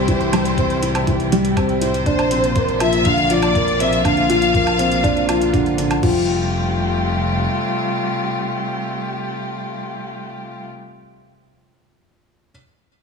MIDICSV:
0, 0, Header, 1, 6, 480
1, 0, Start_track
1, 0, Key_signature, -1, "major"
1, 0, Tempo, 495868
1, 77, Time_signature, 4, 2, 24, 8
1, 12612, End_track
2, 0, Start_track
2, 0, Title_t, "Violin section"
2, 0, Program_c, 0, 48
2, 0, Note_on_c, 0, 72, 94
2, 1274, Note_off_c, 0, 72, 0
2, 1746, Note_on_c, 0, 72, 97
2, 2673, Note_off_c, 0, 72, 0
2, 2715, Note_on_c, 0, 76, 105
2, 2956, Note_off_c, 0, 76, 0
2, 2962, Note_on_c, 0, 77, 114
2, 3199, Note_off_c, 0, 77, 0
2, 3199, Note_on_c, 0, 74, 113
2, 3678, Note_off_c, 0, 74, 0
2, 3683, Note_on_c, 0, 76, 99
2, 3919, Note_on_c, 0, 77, 108
2, 3920, Note_off_c, 0, 76, 0
2, 5319, Note_off_c, 0, 77, 0
2, 12612, End_track
3, 0, Start_track
3, 0, Title_t, "Felt piano"
3, 0, Program_c, 1, 0
3, 0, Control_c, 1, 64, 127
3, 0, Note_on_c, 1, 52, 86
3, 0, Note_on_c, 1, 55, 73
3, 0, Note_on_c, 1, 60, 79
3, 0, Note_on_c, 1, 64, 72
3, 0, Note_on_c, 1, 67, 104
3, 81, Note_off_c, 1, 52, 0
3, 81, Note_on_c, 1, 52, 85
3, 307, Note_off_c, 1, 52, 0
3, 319, Note_off_c, 1, 55, 0
3, 319, Note_on_c, 1, 55, 81
3, 546, Note_off_c, 1, 55, 0
3, 560, Note_off_c, 1, 60, 0
3, 560, Note_on_c, 1, 60, 78
3, 786, Note_off_c, 1, 60, 0
3, 799, Note_off_c, 1, 64, 0
3, 799, Note_on_c, 1, 64, 86
3, 1026, Note_off_c, 1, 64, 0
3, 1039, Note_on_c, 1, 52, 82
3, 1266, Note_off_c, 1, 52, 0
3, 1281, Note_on_c, 1, 55, 108
3, 1507, Note_off_c, 1, 55, 0
3, 1518, Note_on_c, 1, 60, 85
3, 1745, Note_off_c, 1, 60, 0
3, 1759, Note_on_c, 1, 64, 80
3, 1986, Note_off_c, 1, 64, 0
3, 1997, Note_on_c, 1, 62, 102
3, 2012, Control_c, 1, 64, 0
3, 2019, Note_off_c, 1, 67, 0
3, 2191, Control_c, 1, 64, 127
3, 2225, Note_off_c, 1, 62, 0
3, 2237, Note_on_c, 1, 60, 77
3, 2465, Note_off_c, 1, 60, 0
3, 2480, Note_on_c, 1, 58, 78
3, 2615, Note_off_c, 1, 58, 0
3, 2718, Note_on_c, 1, 53, 84
3, 2946, Note_off_c, 1, 53, 0
3, 2960, Note_on_c, 1, 50, 89
3, 3187, Note_off_c, 1, 50, 0
3, 3199, Note_on_c, 1, 53, 81
3, 3426, Note_off_c, 1, 53, 0
3, 3439, Note_on_c, 1, 58, 82
3, 3666, Note_off_c, 1, 58, 0
3, 3679, Note_on_c, 1, 60, 77
3, 3906, Note_off_c, 1, 60, 0
3, 3917, Note_on_c, 1, 50, 83
3, 4145, Note_off_c, 1, 50, 0
3, 4156, Note_on_c, 1, 53, 112
3, 4385, Note_off_c, 1, 53, 0
3, 4396, Note_on_c, 1, 58, 82
3, 4625, Note_off_c, 1, 58, 0
3, 4635, Note_on_c, 1, 60, 86
3, 4864, Note_off_c, 1, 60, 0
3, 4874, Note_on_c, 1, 62, 107
3, 5104, Note_off_c, 1, 62, 0
3, 5119, Note_on_c, 1, 53, 80
3, 5346, Note_off_c, 1, 53, 0
3, 5354, Note_on_c, 1, 50, 82
3, 5581, Note_off_c, 1, 50, 0
3, 5595, Note_on_c, 1, 50, 78
3, 5824, Note_off_c, 1, 50, 0
3, 5835, Note_on_c, 1, 53, 96
3, 5851, Control_c, 1, 64, 0
3, 6037, Control_c, 1, 64, 127
3, 6059, Note_off_c, 1, 53, 0
3, 12110, Control_c, 1, 64, 0
3, 12612, End_track
4, 0, Start_track
4, 0, Title_t, "String quartet"
4, 0, Program_c, 2, 48
4, 0, Note_on_c, 2, 48, 77
4, 0, Note_on_c, 2, 52, 74
4, 0, Note_on_c, 2, 55, 70
4, 0, Note_on_c, 2, 64, 70
4, 0, Note_on_c, 2, 67, 90
4, 1956, Note_off_c, 2, 55, 0
4, 1957, Note_off_c, 2, 67, 0
4, 1959, Note_off_c, 2, 52, 0
4, 1959, Note_off_c, 2, 64, 0
4, 1993, Note_on_c, 2, 58, 76
4, 1995, Note_on_c, 2, 65, 92
4, 1997, Note_on_c, 2, 62, 72
4, 1999, Note_on_c, 2, 53, 74
4, 5797, Note_off_c, 2, 58, 0
4, 5798, Note_off_c, 2, 65, 0
4, 5799, Note_off_c, 2, 62, 0
4, 5800, Note_off_c, 2, 48, 0
4, 5800, Note_off_c, 2, 53, 0
4, 5838, Note_on_c, 2, 48, 80
4, 5840, Note_on_c, 2, 55, 75
4, 5841, Note_on_c, 2, 67, 88
4, 5843, Note_on_c, 2, 65, 75
4, 5844, Note_on_c, 2, 57, 68
4, 10316, Note_off_c, 2, 48, 0
4, 10317, Note_off_c, 2, 55, 0
4, 10319, Note_off_c, 2, 67, 0
4, 10321, Note_off_c, 2, 65, 0
4, 10322, Note_off_c, 2, 57, 0
4, 12612, End_track
5, 0, Start_track
5, 0, Title_t, "Analog synth bass"
5, 0, Program_c, 3, 38
5, 0, Note_on_c, 3, 36, 94
5, 1972, Note_off_c, 3, 36, 0
5, 1997, Note_on_c, 3, 34, 95
5, 5813, Note_off_c, 3, 34, 0
5, 5838, Note_on_c, 3, 29, 107
5, 7239, Note_off_c, 3, 29, 0
5, 12612, End_track
6, 0, Start_track
6, 0, Title_t, "Drums"
6, 77, Note_on_c, 9, 42, 44
6, 79, Note_on_c, 9, 36, 98
6, 174, Note_off_c, 9, 42, 0
6, 176, Note_off_c, 9, 36, 0
6, 200, Note_on_c, 9, 42, 21
6, 297, Note_off_c, 9, 42, 0
6, 320, Note_on_c, 9, 42, 69
6, 320, Note_on_c, 9, 77, 65
6, 416, Note_off_c, 9, 42, 0
6, 416, Note_off_c, 9, 77, 0
6, 440, Note_on_c, 9, 42, 30
6, 537, Note_off_c, 9, 42, 0
6, 559, Note_on_c, 9, 36, 106
6, 560, Note_on_c, 9, 42, 39
6, 656, Note_off_c, 9, 36, 0
6, 657, Note_off_c, 9, 42, 0
6, 679, Note_on_c, 9, 42, 21
6, 775, Note_off_c, 9, 42, 0
6, 799, Note_on_c, 9, 42, 77
6, 896, Note_off_c, 9, 42, 0
6, 920, Note_on_c, 9, 42, 32
6, 920, Note_on_c, 9, 77, 68
6, 1016, Note_off_c, 9, 42, 0
6, 1016, Note_off_c, 9, 77, 0
6, 1039, Note_on_c, 9, 36, 101
6, 1039, Note_on_c, 9, 42, 42
6, 1136, Note_off_c, 9, 36, 0
6, 1136, Note_off_c, 9, 42, 0
6, 1160, Note_on_c, 9, 42, 22
6, 1257, Note_off_c, 9, 42, 0
6, 1280, Note_on_c, 9, 42, 66
6, 1377, Note_off_c, 9, 42, 0
6, 1400, Note_on_c, 9, 42, 31
6, 1497, Note_off_c, 9, 42, 0
6, 1518, Note_on_c, 9, 36, 102
6, 1519, Note_on_c, 9, 42, 41
6, 1519, Note_on_c, 9, 77, 66
6, 1615, Note_off_c, 9, 36, 0
6, 1616, Note_off_c, 9, 42, 0
6, 1616, Note_off_c, 9, 77, 0
6, 1636, Note_on_c, 9, 42, 21
6, 1733, Note_off_c, 9, 42, 0
6, 1757, Note_on_c, 9, 42, 72
6, 1854, Note_off_c, 9, 42, 0
6, 1881, Note_on_c, 9, 42, 33
6, 1978, Note_off_c, 9, 42, 0
6, 1996, Note_on_c, 9, 36, 94
6, 1997, Note_on_c, 9, 42, 42
6, 2093, Note_off_c, 9, 36, 0
6, 2093, Note_off_c, 9, 42, 0
6, 2118, Note_on_c, 9, 42, 21
6, 2118, Note_on_c, 9, 77, 70
6, 2215, Note_off_c, 9, 42, 0
6, 2215, Note_off_c, 9, 77, 0
6, 2236, Note_on_c, 9, 42, 75
6, 2333, Note_off_c, 9, 42, 0
6, 2360, Note_on_c, 9, 42, 29
6, 2456, Note_off_c, 9, 42, 0
6, 2474, Note_on_c, 9, 42, 40
6, 2476, Note_on_c, 9, 36, 103
6, 2571, Note_off_c, 9, 42, 0
6, 2573, Note_off_c, 9, 36, 0
6, 2599, Note_on_c, 9, 42, 20
6, 2696, Note_off_c, 9, 42, 0
6, 2714, Note_on_c, 9, 42, 74
6, 2714, Note_on_c, 9, 77, 69
6, 2811, Note_off_c, 9, 42, 0
6, 2811, Note_off_c, 9, 77, 0
6, 2833, Note_on_c, 9, 42, 32
6, 2929, Note_off_c, 9, 42, 0
6, 2952, Note_on_c, 9, 42, 45
6, 2956, Note_on_c, 9, 36, 102
6, 3049, Note_off_c, 9, 42, 0
6, 3053, Note_off_c, 9, 36, 0
6, 3076, Note_on_c, 9, 42, 21
6, 3172, Note_off_c, 9, 42, 0
6, 3195, Note_on_c, 9, 42, 66
6, 3292, Note_off_c, 9, 42, 0
6, 3316, Note_on_c, 9, 42, 30
6, 3316, Note_on_c, 9, 77, 64
6, 3412, Note_off_c, 9, 42, 0
6, 3412, Note_off_c, 9, 77, 0
6, 3437, Note_on_c, 9, 36, 104
6, 3440, Note_on_c, 9, 42, 41
6, 3534, Note_off_c, 9, 36, 0
6, 3537, Note_off_c, 9, 42, 0
6, 3560, Note_on_c, 9, 42, 20
6, 3657, Note_off_c, 9, 42, 0
6, 3681, Note_on_c, 9, 42, 76
6, 3778, Note_off_c, 9, 42, 0
6, 3801, Note_on_c, 9, 42, 31
6, 3898, Note_off_c, 9, 42, 0
6, 3918, Note_on_c, 9, 36, 102
6, 3920, Note_on_c, 9, 42, 43
6, 3920, Note_on_c, 9, 77, 70
6, 4015, Note_off_c, 9, 36, 0
6, 4017, Note_off_c, 9, 42, 0
6, 4017, Note_off_c, 9, 77, 0
6, 4037, Note_on_c, 9, 42, 22
6, 4134, Note_off_c, 9, 42, 0
6, 4160, Note_on_c, 9, 42, 69
6, 4256, Note_off_c, 9, 42, 0
6, 4278, Note_on_c, 9, 42, 31
6, 4375, Note_off_c, 9, 42, 0
6, 4398, Note_on_c, 9, 36, 112
6, 4402, Note_on_c, 9, 42, 43
6, 4494, Note_off_c, 9, 36, 0
6, 4498, Note_off_c, 9, 42, 0
6, 4519, Note_on_c, 9, 42, 20
6, 4519, Note_on_c, 9, 77, 68
6, 4616, Note_off_c, 9, 42, 0
6, 4616, Note_off_c, 9, 77, 0
6, 4639, Note_on_c, 9, 42, 73
6, 4736, Note_off_c, 9, 42, 0
6, 4758, Note_on_c, 9, 42, 33
6, 4855, Note_off_c, 9, 42, 0
6, 4878, Note_on_c, 9, 36, 108
6, 4881, Note_on_c, 9, 42, 43
6, 4974, Note_off_c, 9, 36, 0
6, 4978, Note_off_c, 9, 42, 0
6, 5003, Note_on_c, 9, 42, 21
6, 5099, Note_off_c, 9, 42, 0
6, 5119, Note_on_c, 9, 42, 70
6, 5119, Note_on_c, 9, 77, 66
6, 5215, Note_off_c, 9, 42, 0
6, 5215, Note_off_c, 9, 77, 0
6, 5242, Note_on_c, 9, 42, 32
6, 5339, Note_off_c, 9, 42, 0
6, 5358, Note_on_c, 9, 36, 96
6, 5360, Note_on_c, 9, 42, 42
6, 5455, Note_off_c, 9, 36, 0
6, 5457, Note_off_c, 9, 42, 0
6, 5480, Note_on_c, 9, 42, 20
6, 5577, Note_off_c, 9, 42, 0
6, 5598, Note_on_c, 9, 42, 74
6, 5695, Note_off_c, 9, 42, 0
6, 5718, Note_on_c, 9, 42, 32
6, 5718, Note_on_c, 9, 77, 68
6, 5815, Note_off_c, 9, 42, 0
6, 5815, Note_off_c, 9, 77, 0
6, 5838, Note_on_c, 9, 36, 118
6, 5838, Note_on_c, 9, 49, 86
6, 5934, Note_off_c, 9, 49, 0
6, 5935, Note_off_c, 9, 36, 0
6, 12612, End_track
0, 0, End_of_file